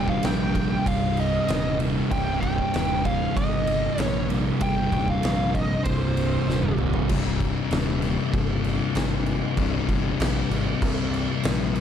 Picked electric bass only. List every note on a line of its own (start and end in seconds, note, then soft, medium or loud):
0.00 0.18 D#1 medium
0.24 0.76 A#1 medium
0.86 1.38 C1 loud
1.48 2.00 D#1 medium
2.11 2.63 C1 medium
2.74 3.25 D#1 medium
3.36 3.88 G1 loud
3.98 4.50 A#1 medium
4.61 4.87 G1 medium
4.92 5.18 D#1 medium
5.24 5.75 A#1 medium
5.85 6.37 C1 medium
6.47 6.99 D#1 medium
7.10 7.55 C1 medium
7.71 8.16 D#1 medium
8.33 8.79 G1 loud
8.95 9.41 G#1 medium
9.58 9.80 C1 loud
9.88 10.11 G1 loud
10.20 10.42 A#1 loud
10.50 10.73 G#1 loud
10.82 11.27 C2 loud
11.44 11.80 A#1 medium